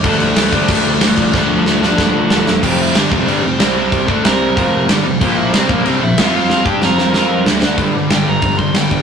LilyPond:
<<
  \new Staff \with { instrumentName = "Lead electric guitar" } { \time 4/4 \key d \phrygian \tempo 4 = 186 <a a'>8 <g g'>8 <g g'>8 <g g'>4 <g g'>4 <f f'>8 | <g g'>8 <f f'>8 <f f'>4 <g g'>8 <f f'>4 r8 | \key f \major <g' g''>8 <e' e''>8 <d' d''>8 <d' d''>4 <c' c''>4 <d' d''>8~ | <d' d''>8 <d' d''>8 <bes' bes''>2 r4 |
<g' g''>8 <e' e''>8 <d' d''>8 <d' d''>4 <e' e''>4 <f' f''>8 | <f' f''>8 <g' g''>8 <bes' bes''>2 r4 | \key g \minor r4 g''8 bes''4 c'''8 g''4 | }
  \new Staff \with { instrumentName = "Overdriven electric guitar" } { \clef bass \time 4/4 \key d \phrygian <d f a d'>4. <d f a d'>2~ <d f a d'>8 | <d f a d'>4. <d f a d'>2~ <d f a d'>8 | \key f \major <f, c f>4 <g, d g>8 <f, c f>8 <g, d g>8 <f, c>8 <c g c'>4~ | <c g c'>8 <d a d'>8 <c g c'>4 <f, c f>4 <g, d g>8 <f, c>8 |
<bes, f bes>4 <c g c'>8 <bes, f bes>8 <c g c'>8 <bes, f>8 <f c' f'>4~ | <f c' f'>8 <g d' g'>8 <f c' f'>4 <f c' f'>4 <d a d'>4 | \key g \minor <g, d g>8 <g, d>8 <g, d>8 <g, d>8 <g, d>8 <g, d>8 <g, d>8 <g, d>8 | }
  \new Staff \with { instrumentName = "Overdriven electric guitar" } { \clef bass \time 4/4 \key d \phrygian <d a d'>4. <d a d'>4. <d a d'>4 | <d a d'>4. <d a d'>4. <d a d'>4 | \key f \major <f, c f>4 <g, d g>8 <f, c f>8 <g, d g>8 <f, c>8 <c g c'>4~ | <c g c'>8 <d a d'>8 <c g c'>4 <f, c f>4 <g, d g>8 <f, c>8 |
<bes, f bes>4 <c g c'>8 <bes, f bes>8 <c g c'>8 <bes, f>8 <f c' f'>4~ | <f c' f'>8 <g d' g'>8 <f c' f'>4 <f c' f'>4 <d a d'>4 | \key g \minor <g, d g>8 <g, d>8 <g, d>8 <g, d>8 <g, d>8 <g, d>8 <g, d>8 <g, d>8 | }
  \new Staff \with { instrumentName = "Overdriven electric guitar" } { \clef bass \time 4/4 \key d \phrygian <d a d'>4. <d a d'>4. <d a d'>4 | <d a d'>4. <d a d'>4. <d a d'>4 | \key f \major <f, c f>4 <g, d g>8 <f, c f>8 <g, d g>8 <f, c>8 <c g c'>4~ | <c g c'>8 <d a d'>8 <c g c'>4 <f, c f>4 <g, d g>8 <f, c>8 |
<bes, f bes>4 <c g c'>8 <bes, f bes>8 <c g c'>8 <bes, f>8 <f c' f'>4~ | <f c' f'>8 <g d' g'>8 <f c' f'>4 <f c' f'>4 <d a d'>4 | \key g \minor <g, d g>8 <g, d g>8 <g, d g>8 <g, d g>8 <g, d g>8 <g, d g>8 <g, d g>8 <g, d g>8 | }
  \new Staff \with { instrumentName = "Picked electric bass" } { \clef bass \time 4/4 \key d \phrygian d,8 d,8 d,8 d8 d,8 d,8 d,8 d,8 | d,8 d,8 d,8 d,8 d,8 d,8 d,8 e,8 | \key f \major f,,4 g,,8 f,,8 g,,8 f,,8 c,4~ | c,8 d,8 c,4 f,,4 g,,8 f,,8 |
bes,,4 c,8 bes,,8 c,8 bes,,8 f,4~ | f,8 g,8 f,4 f,4 d,4 | \key g \minor g,,8 g,,8 g,,8 g,,8 f,8 g,,8 g,,8 g,,8 | }
  \new DrumStaff \with { instrumentName = "Drums" } \drummode { \time 4/4 <cymc bd>8 cymc8 <cymc sn>8 <cymc bd>8 <cymc bd>8 cymc8 <cymc sn>8 <cymc bd>8 | <bd sn>4 sn8 sn8 <bd sn>4 sn8 sn8 | <cymc bd>4 <cymc sn>8 bd8 cymc4 <cymc sn>4 | <cymc bd>8 bd8 <cymc sn>4 <cymc bd>4 <cymc sn>4 |
<cymc bd>4 <cymc sn>8 bd8 cymc4 <cymc sn>4 | sn8 bd8 sn8 sn8 sn4 sn8 sn8 | <cymc bd>4 <cymc sn>4 <cymc bd>8 bd8 <cymc sn>8 bd8 | }
>>